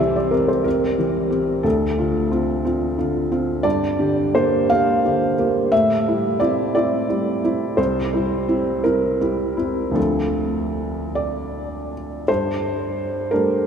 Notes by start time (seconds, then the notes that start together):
Already playing: C2 C5 D5
0.00 E3 G4 E5
0.16 D5
0.31 C4 G4 A#4
0.48 C5
0.64 C4 G4 A#4
0.98 E3 G4
1.30 C4 G4
1.63 D2 A4
1.98 D3 F4
2.31 C4 F4
2.65 C4 F4
2.98 D3 F4
3.31 C4 F4
3.63 G2 D5
3.99 D3 G4
4.35 A#3 G4 C5
4.70 A#3 G4 F5
5.05 D3 G4
5.39 A#3 G4
5.72 A2 E5
6.08 G3 E4
6.40 C4 E4 D5
6.75 C4 E4 D5
7.09 G3 E4
7.44 C4 E4
7.77 C2 C5
8.14 G3 E4
8.48 C4 E4
8.84 C4 E4 A#4
9.21 G3 E4
9.57 C4 E4
9.91 D2 F3 C4 D4
9.95 A4
11.15 D5
12.28 G2 C5
13.31 G3 A3 D4 A#4